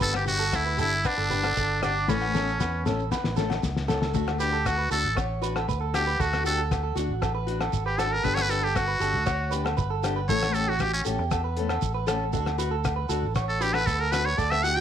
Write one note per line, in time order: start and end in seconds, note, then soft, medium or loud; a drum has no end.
0.00 0.50 G1 loud
0.00 0.16 B3 medium
0.00 0.17 D4 medium
0.00 0.17 G4 medium
0.00 0.14 A4 loud
0.00 0.13 B4 medium
0.00 kick medium
0.00 shekere medium
0.13 0.27 G4 medium
0.13 muted clean electric guitar stroke medium
0.13 cross-stick medium
0.13 low agogo medium
0.26 0.43 D4 soft
0.26 0.57 F#4 loud
0.26 0.42 G4 medium
0.26 closed hi-hat soft
0.26 shekere medium
0.39 0.64 A4 medium
0.39 shekere soft
0.52 0.80 D2 medium
0.52 0.80 E4 medium
0.52 kick medium
0.52 cross-stick medium
0.52 low agogo medium
0.52 shekere medium
0.66 0.78 B4 medium
0.77 1.03 G1 medium
0.77 0.95 D4 soft
0.77 1.08 E4 loud
0.77 0.94 G4 medium
0.77 0.91 A4 medium
0.77 closed hi-hat soft
0.77 shekere medium
1.04 1.83 D4 medium
1.04 1.17 B4 medium
1.04 kick medium
1.04 cross-stick medium
1.04 low agogo medium
1.04 shekere medium
1.18 1.54 G1 medium
1.18 1.30 A4 medium
1.30 1.47 D4 soft
1.30 1.46 G4 soft
1.30 1.43 B4 medium
1.30 closed hi-hat soft
1.30 shekere medium
1.44 1.55 A4 medium
1.44 cross-stick medium
1.44 low agogo medium
1.57 2.06 G1 medium
1.57 1.81 A4 medium
1.57 kick medium
1.57 shekere medium
1.82 2.11 D4 medium
1.82 1.99 D4 soft
1.82 1.98 G4 soft
1.82 2.07 D5 medium
1.82 cross-stick medium
1.82 closed hi-hat soft
1.82 low agogo medium
1.82 shekere medium
2.08 2.57 A1 loud
2.08 2.24 E3 medium
2.08 2.24 A3 medium
2.08 2.86 C#4 medium
2.08 2.25 A4 medium
2.08 2.33 B4 medium
2.08 muted steel-string acoustic guitar stroke medium
2.08 kick medium
2.08 snare soft
2.08 shekere medium
2.22 low agogo medium
2.34 2.51 A3 soft
2.34 2.50 C#4 soft
2.34 2.50 A4 soft
2.34 2.59 A4 medium
2.34 snare medium
2.34 shekere medium
2.48 shekere soft
2.60 2.88 E2 medium
2.60 2.84 B4 medium
2.60 kick medium
2.60 snare medium
2.60 low agogo medium
2.60 shekere medium
2.86 3.11 A1 medium
2.86 3.03 A3 soft
2.86 3.02 C#4 soft
2.86 3.01 A4 medium
2.86 3.10 A4 medium
2.86 snare medium
2.86 shekere medium
2.99 shekere soft
3.12 3.36 B4 medium
3.12 kick medium
3.12 snare medium
3.12 low agogo medium
3.12 shekere medium
3.24 3.61 A1 medium
3.24 snare medium
3.37 3.54 A3 soft
3.37 3.54 C#4 medium
3.37 3.61 A4 medium
3.37 3.53 A4 medium
3.37 snare medium
3.37 shekere medium
3.50 snare medium
3.50 low agogo medium
3.63 4.12 C#2 medium
3.63 kick medium
3.63 snare medium
3.63 shekere medium
3.77 snare medium
3.88 4.05 A3 soft
3.88 4.05 C#4 medium
3.88 4.04 A4 medium
3.88 4.00 A4 medium
3.88 snare medium
3.88 low agogo medium
3.88 shekere medium
4.01 4.13 A4 medium
4.01 snare medium
4.14 4.88 D2 loud
4.14 4.29 A3 medium
4.14 4.30 D4 medium
4.14 4.30 F#4 medium
4.14 4.39 A4 medium
4.14 kick medium
4.14 shekere loud
4.28 cross-stick medium
4.28 low agogo medium
4.39 4.57 D4 soft
4.39 4.55 F#4 medium
4.39 4.68 G4 medium
4.39 4.52 B4 medium
4.39 closed hi-hat soft
4.39 shekere medium
4.53 4.77 A4 medium
4.66 4.91 F#4 medium
4.66 kick medium
4.66 cross-stick medium
4.66 low agogo medium
4.66 shekere loud
4.78 4.90 B4 medium
4.90 5.05 D2 medium
4.90 5.08 D4 soft
4.90 5.06 F#4 medium
4.90 5.16 A4 medium
4.90 closed hi-hat soft
4.90 shekere medium
5.04 5.65 A1 medium
5.16 5.41 C#5 medium
5.16 kick medium
5.16 cross-stick medium
5.16 low agogo medium
5.16 shekere loud
5.42 5.59 D4 soft
5.42 5.58 F#4 medium
5.42 5.55 B4 medium
5.42 closed hi-hat soft
5.42 shekere medium
5.56 5.68 A4 medium
5.56 cross-stick medium
5.56 low agogo medium
5.68 6.17 D2 medium
5.68 5.80 B4 medium
5.68 kick medium
5.68 shekere medium
5.81 6.05 A4 medium
5.93 6.11 D4 soft
5.93 6.09 F#4 medium
5.93 6.22 G4 medium
5.93 cross-stick medium
5.93 closed hi-hat medium
5.93 low agogo medium
5.93 shekere medium
6.07 6.19 B4 medium
6.20 6.93 D2 loud
6.20 6.46 F#4 medium
6.20 6.44 A4 medium
6.20 kick medium
6.20 shekere medium
6.33 cross-stick medium
6.33 low agogo medium
6.44 6.62 D4 soft
6.44 6.60 F#4 medium
6.44 6.58 G4 medium
6.44 6.61 A4 medium
6.44 closed hi-hat medium
6.44 shekere medium
6.58 6.82 A4 medium
6.71 kick medium
6.71 cross-stick medium
6.71 low agogo medium
6.71 shekere medium
6.83 6.96 A4 medium
6.95 7.10 D2 medium
6.95 7.13 D4 soft
6.95 7.11 F#4 medium
6.95 7.21 F#4 medium
6.95 closed hi-hat medium
6.95 shekere medium
7.09 7.70 A1 medium
7.22 7.34 A4 medium
7.22 kick medium
7.22 cross-stick medium
7.22 low agogo medium
7.22 shekere medium
7.35 7.59 B4 medium
7.47 7.64 D4 soft
7.47 7.63 F#4 medium
7.47 closed hi-hat medium
7.61 7.85 A4 medium
7.61 cross-stick medium
7.61 low agogo medium
7.73 8.22 G#1 medium
7.73 kick medium
7.73 shekere medium
7.86 8.00 G4 medium
7.86 7.98 B4 medium
7.98 8.15 D4 soft
7.98 8.14 F#4 soft
7.98 8.23 A4 medium
7.98 8.14 A4 medium
7.98 cross-stick medium
7.98 closed hi-hat soft
7.98 low agogo medium
7.98 shekere medium
8.13 8.26 A#4 medium
8.23 8.97 G1 loud
8.23 8.39 B3 medium
8.23 8.40 D4 medium
8.23 8.40 G4 medium
8.23 8.49 A4 medium
8.23 8.36 B4 medium
8.23 kick medium
8.23 shekere medium
8.35 8.43 C#5 loud
8.35 cross-stick medium
8.35 low agogo medium
8.42 8.52 B4 medium
8.49 8.67 D4 soft
8.49 8.65 G4 medium
8.49 8.65 A4 medium
8.49 8.62 B4 medium
8.49 closed hi-hat soft
8.49 shekere medium
8.62 8.77 G4 medium
8.62 8.87 A4 medium
8.75 9.53 F#4 medium
8.75 kick medium
8.75 cross-stick medium
8.75 low agogo medium
8.75 shekere loud
8.88 9.00 B4 medium
9.00 9.15 G1 medium
9.00 9.18 D4 soft
9.00 9.16 G4 medium
9.00 9.25 A4 medium
9.00 closed hi-hat soft
9.00 shekere medium
9.14 9.74 D2 loud
9.26 9.51 C#5 medium
9.26 kick medium
9.26 cross-stick medium
9.26 low agogo medium
9.26 shekere medium
9.51 9.69 D4 medium
9.51 9.68 G4 medium
9.51 9.64 B4 medium
9.51 closed hi-hat medium
9.51 shekere medium
9.65 9.77 A4 medium
9.65 cross-stick medium
9.65 low agogo medium
9.77 10.27 G1 medium
9.77 9.90 B4 medium
9.77 kick medium
9.77 shekere loud
9.90 10.15 A4 medium
10.03 10.20 D4 medium
10.03 10.19 G4 medium
10.03 cross-stick medium
10.03 closed hi-hat soft
10.03 low agogo medium
10.03 shekere medium
10.16 10.28 B4 medium
10.29 11.02 A1 loud
10.29 10.45 E3 medium
10.29 10.45 A3 medium
10.29 10.45 C#4 medium
10.29 10.53 A4 medium
10.29 10.46 A4 medium
10.29 10.56 C#5 medium
10.29 kick medium
10.29 shekere medium
10.42 cross-stick medium
10.42 low agogo medium
10.54 10.72 A3 soft
10.54 10.71 C#4 medium
10.54 10.67 G4 medium
10.54 10.70 A4 medium
10.54 10.71 A4 medium
10.54 closed hi-hat soft
10.54 shekere medium
10.68 10.92 F#4 medium
10.68 10.82 F#4 medium
10.79 10.93 G4 medium
10.79 kick medium
10.79 cross-stick medium
10.79 low agogo medium
10.79 shekere loud
10.93 11.01 C#4 medium
11.05 11.19 A1 medium
11.05 11.22 A3 soft
11.05 11.22 C#4 soft
11.05 11.30 G4 medium
11.05 11.21 A4 medium
11.05 closed hi-hat medium
11.05 shekere medium
11.19 11.79 E2 medium
11.31 11.44 A4 medium
11.31 kick medium
11.31 cross-stick medium
11.31 low agogo medium
11.31 shekere loud
11.44 11.68 B4 medium
11.57 11.74 A3 soft
11.57 11.73 C#4 medium
11.57 11.72 A4 medium
11.57 closed hi-hat medium
11.69 11.94 A4 medium
11.69 cross-stick medium
11.69 low agogo medium
11.82 12.31 A1 medium
11.82 kick medium
11.82 shekere loud
11.95 12.07 B4 medium
12.07 12.24 A3 medium
12.07 12.24 C#4 medium
12.07 12.23 A4 medium
12.07 12.32 A4 medium
12.07 cross-stick medium
12.07 closed hi-hat medium
12.07 low agogo medium
12.07 shekere medium
12.33 13.06 D2 loud
12.33 12.49 D4 medium
12.33 12.50 F#4 medium
12.33 12.58 A4 medium
12.33 muted steel-string acoustic guitar stroke medium
12.33 kick medium
12.33 shekere loud
12.46 cross-stick medium
12.46 low agogo medium
12.58 12.74 F#4 medium
12.58 12.71 B4 medium
12.58 muted steel-string acoustic guitar stroke medium
12.58 closed hi-hat medium
12.58 shekere medium
12.71 12.96 A4 medium
12.85 kick medium
12.85 cross-stick medium
12.85 low agogo medium
12.85 shekere loud
12.96 13.09 B4 medium
13.09 13.24 D2 medium
13.09 13.27 D4 soft
13.09 13.25 F#4 medium
13.09 13.34 A4 medium
13.09 closed hi-hat soft
13.09 shekere medium
13.23 13.84 A1 medium
13.35 13.60 C#5 medium
13.35 kick medium
13.35 cross-stick medium
13.35 low agogo medium
13.35 shekere loud
13.49 13.64 A4 medium
13.60 13.78 D4 soft
13.60 13.76 F#4 soft
13.60 13.75 G4 medium
13.60 13.73 B4 medium
13.60 closed hi-hat soft
13.60 shekere medium
13.73 13.86 A4 medium
13.73 13.88 B4 medium
13.73 cross-stick medium
13.73 low agogo medium
13.86 14.36 D2 medium
13.86 14.02 A4 medium
13.86 13.99 B4 medium
13.86 kick medium
13.86 shekere loud
13.99 14.24 A4 medium
13.99 14.13 A#4 medium
14.11 14.30 D4 soft
14.11 14.28 F#4 medium
14.11 14.27 B4 medium
14.11 cross-stick medium
14.11 closed hi-hat soft
14.11 low agogo medium
14.11 shekere medium
14.25 14.37 B4 medium
14.25 14.40 C#5 medium
14.38 14.80 D2 medium
14.38 14.63 A4 medium
14.38 14.52 D5 medium
14.38 kick medium
14.38 shekere medium
14.51 14.65 E5 medium
14.51 cross-stick medium
14.51 low agogo medium
14.63 14.80 D4 soft
14.63 14.79 F#4 medium
14.63 14.76 G4 medium
14.63 14.77 F#5 loud
14.63 closed hi-hat soft
14.63 shekere medium
14.75 14.80 F#4 medium
14.75 14.80 G5 medium